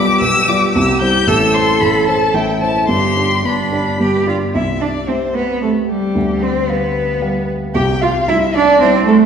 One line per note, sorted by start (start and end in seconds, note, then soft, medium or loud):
0.00 0.21 B1 medium
0.00 0.21 B2 medium
0.00 0.19 G3 medium
0.00 0.19 F4 medium
0.00 0.72 G4 medium
0.00 0.20 D5 medium
0.00 0.21 D6 loud
0.21 0.47 B1 medium
0.21 0.47 B2 medium
0.21 0.49 E6 loud
0.48 0.72 G3 medium
0.48 0.72 F4 medium
0.48 0.73 D5 medium
0.48 0.74 D6 medium
0.74 1.01 C2 medium
0.74 1.01 C3 medium
0.74 1.29 G4 medium
0.74 1.00 E6 medium
1.01 1.25 G3 medium
1.01 1.25 E4 medium
1.01 1.25 C5 medium
1.01 1.29 G6 medium
1.27 1.53 A1 medium
1.27 1.53 A2 medium
1.27 2.36 A4 medium
1.27 1.55 E6 loud
1.54 1.78 A3 soft
1.54 1.79 E4 soft
1.54 1.79 C5 soft
1.54 1.82 C6 loud
1.81 2.07 A1 medium
1.81 2.07 A2 soft
1.81 2.07 B5 medium
2.08 2.32 A3 soft
2.08 2.32 E4 soft
2.08 2.32 C5 medium
2.08 2.36 A5 medium
2.34 2.61 A1 medium
2.34 2.61 A2 medium
2.34 2.89 E4 medium
2.34 2.61 G5 medium
2.61 2.86 A3 soft
2.61 2.86 E4 soft
2.61 2.87 C5 medium
2.61 2.88 A5 medium
2.88 3.16 G1 medium
2.88 3.16 G2 medium
2.88 3.39 G4 medium
2.88 3.47 C6 medium
3.16 3.42 D4 soft
3.16 3.42 G4 soft
3.16 3.42 D5 soft
3.44 3.72 G1 medium
3.44 3.72 G2 soft
3.44 3.97 D4 medium
3.44 4.28 B5 medium
3.72 3.97 D4 soft
3.72 3.97 G4 soft
3.72 3.98 D5 soft
4.00 4.27 G1 soft
4.00 4.27 G2 soft
4.00 4.27 G4 medium
4.27 4.52 D4 soft
4.27 4.36 F4 medium
4.27 4.52 G4 soft
4.27 4.52 D5 medium
4.55 6.11 C2 soft
4.55 6.11 C3 soft
4.55 4.63 E4 medium
4.55 4.83 E5 medium
4.81 4.89 D4 medium
4.81 5.10 D5 medium
5.08 5.16 C4 medium
5.08 5.58 C4 soft
5.08 5.58 G4 soft
5.08 5.36 C5 medium
5.08 5.58 E5 soft
5.34 5.61 B3 medium
5.34 5.62 B4 medium
5.62 5.70 A3 medium
5.62 6.11 C4 soft
5.62 6.12 G4 soft
5.62 5.70 A4 medium
5.62 6.12 E5 soft
5.89 6.44 G3 medium
5.89 6.44 G4 medium
6.15 7.72 D2 medium
6.15 7.72 D3 soft
6.42 6.70 C4 medium
6.42 6.71 C5 medium
6.69 7.18 G3 soft
6.69 7.49 B3 medium
6.69 7.18 G4 soft
6.69 7.49 B4 medium
6.69 7.19 F5 soft
7.21 7.71 G3 soft
7.21 7.71 G4 soft
7.21 7.72 F5 soft
7.75 9.26 C2 medium
7.75 9.26 C3 medium
7.75 7.83 G4 medium
7.75 8.03 G5 medium
8.02 8.10 F4 medium
8.02 8.30 F5 medium
8.28 8.77 G3 soft
8.28 8.77 E4 soft
8.28 8.37 E4 medium
8.28 8.56 E5 medium
8.28 8.77 E5 medium
8.54 8.80 D4 medium
8.54 8.81 D5 medium
8.81 9.26 G3 medium
8.81 9.05 C4 loud
8.81 9.26 E4 soft
8.81 8.89 C5 medium
8.81 9.26 E5 medium
9.06 9.26 A3 medium
9.06 9.15 A4 medium